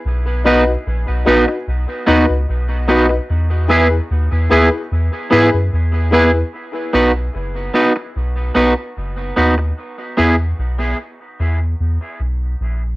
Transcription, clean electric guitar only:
X:1
M:4/4
L:1/8
Q:1/4=74
K:B
V:1 name="Clean electric guitar"
z [B,DFB] z [B,DFB] z [B,DFB] z [B,DFB] | z [B,EGB] z [B,EGB] z [B,EGB] z [B,EGB] | z [B,DFB] z [B,DFB] z [B,DFB] z [B,DFB] | z [B,EGB] z6 |]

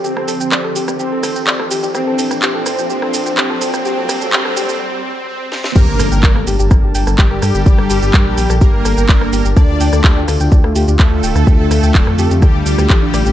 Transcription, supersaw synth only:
X:1
M:4/4
L:1/8
Q:1/4=126
K:Gm
V:1 name="Supersaw synth"
C3 z C3 z | C2 C2 C2 C2 | C C C C C C C C | B,3 z3 G,2- |
G,4 B,4 | D3 z3 A,2- | A,4 G,4 |]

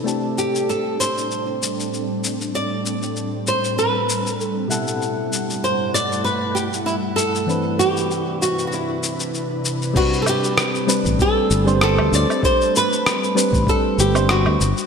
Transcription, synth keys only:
X:1
M:4/4
L:1/16
Q:"Swing 16ths" 1/4=97
K:Ador
V:1 name="Synth keys"
[A,CDGA]16- | [A,CDGA]12- [A,CDGA]2 [B,,G,EAf]2- | [B,,G,EAf]16 | [E,CDB]16 |
[G,CDB]6 [G,CDB] z4 [G,CDc] z4 | [G,CDA]6 [G,CDB] z4 [G,CDc] z4 |]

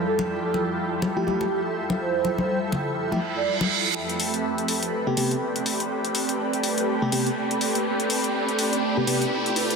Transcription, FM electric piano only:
X:1
M:4/4
L:1/16
Q:"Swing 16ths" 1/4=123
K:Am
V:1 name="FM electric piano"
z8 z [F,A,EG] [F,A,EG] z4 z | z8 z [F,A,EG] z6 | z8 z [C,A,B,G] [C,A,B,G] z4 z | z8 z [C,A,B,G] [C,A,B,G] z4 z |
z8 z [C,A,B,G] [C,A,B,G] z4 z |]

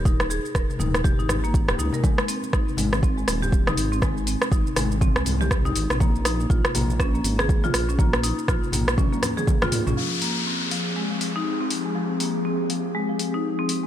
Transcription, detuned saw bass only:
X:1
M:4/4
L:1/16
Q:"Swing 16ths" 1/4=121
K:Fm
V:1 name="Detuned saw bass" clef=bass
E,,,3 z E,,, z E,,,3 A,,, A,,,3 E,,, D,, z | z4 A,,, z A,,,4 E,,,4 A,,,2- | A,,,3 z A,,, z A,,,3 C,, C,,4 A,,, B,,,- | B,,,4 B,,, z B,,,4 A,,,4 B,,,2- |
B,,,3 z B,,, z B,,,3 z4 z B,, B,,, | z16 | z16 |]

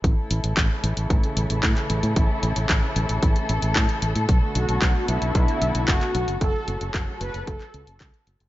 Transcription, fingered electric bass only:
X:1
M:4/4
L:1/16
Q:1/4=113
K:A
V:1 name="Fingered electric bass" clef=bass
A,,, z A,,, A,,, A,,, z A,,, A,,, A,,, z A,,, A,,, A,, z A,,, A,, | A,,, z A,,, A,,, A,,, z A,,, A,,, A,,, z A,,, A,,, A,, z A,,, A,, | B,,, z B,,, B,,, B,,, z B,,, B,,, B,,, z B,,, B,,, F,,, z B,,, F,,, | F,,, z F,,, F,,, F,,, z F,,, F,,, F,,, z C,, F,,, C,, z F,,, F,,, |]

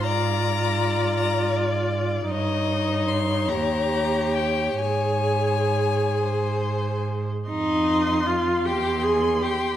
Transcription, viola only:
X:1
M:6/8
L:1/16
Q:3/8=51
K:Ab
V:1 name="Viola"
F12 | E6 G6 | A8- A3 z | [K:Fm] E4 F2 G2 A2 G2 |]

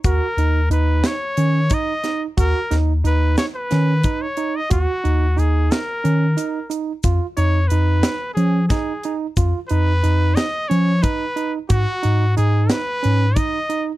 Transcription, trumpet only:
X:1
M:7/8
L:1/16
Q:1/4=90
K:D#m
V:1 name="Trumpet"
A4 B2 c4 d3 z | A2 z2 B2 c B4 c2 d | F4 G2 A6 z2 | z2 c2 B4 G2 G3 z |
z2 B4 d2 c2 B3 z | F4 G2 B4 d3 z |]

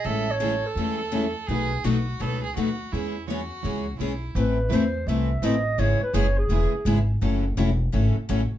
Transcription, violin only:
X:1
M:4/4
L:1/8
Q:"Swing" 1/4=168
K:Alyd
V:1 name="Violin"
A2 A6 | G2 F2 A G F2 | E2 F4 E2 | z8 |
z8 | z8 |]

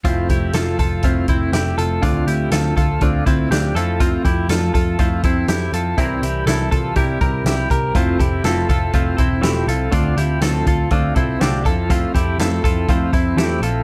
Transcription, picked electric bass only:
X:1
M:4/4
L:1/8
Q:1/4=122
K:F
V:1 name="Picked electric bass" clef=bass
F,,, F,,, F,,, F,,, F,,, F,,, F,,, F,,, | D,, D,, D,, D,, D,, D,, D,, F,,- | F,, F,, F,, F,, F,, F,, F,, F,, | C,, C,, C,, C,, C,, C,, C,, C,, |
F,,, F,,, F,,, F,,, F,,, E,,, E,,, C,, | D,, D,, D,, D,, D,, C,, C,, F,,- | F,, F,, F,, F,, F,, F,, E,, B,,, |]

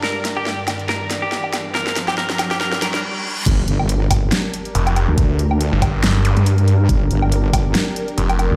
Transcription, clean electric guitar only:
X:1
M:4/4
L:1/16
Q:"Swing 16ths" 1/4=140
K:Gm
V:1 name="Clean electric guitar"
B2 z G2 z3 B2 z G2 z3 | B2 z G B2 z G B2 B2 z4 | z16 | z16 |
z16 |]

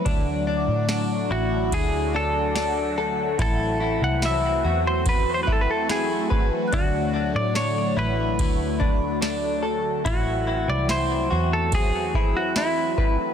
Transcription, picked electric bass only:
X:1
M:4/4
L:1/16
Q:1/4=72
K:Dlyd
V:1 name="Picked electric bass" clef=bass
D,,3 A,,3 A,,,2 D,,8 | A,,,3 =C,,3 E,,8- E,,2 | D,,3 A,,3 A,,,2 D,,8 | A,,,3 =C,,3 E,,8- E,,2 |]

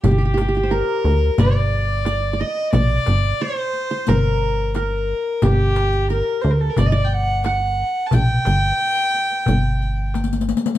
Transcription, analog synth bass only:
X:1
M:4/4
L:1/8
Q:1/4=89
K:none
V:1 name="Analog synth bass" clef=bass
G,,,3 D,, G,,,4 | _B,,, G,,, z2 G,,,4 | G,,,3 D,, G,,,4 | _B,,, G,,, z2 G,,,4 |]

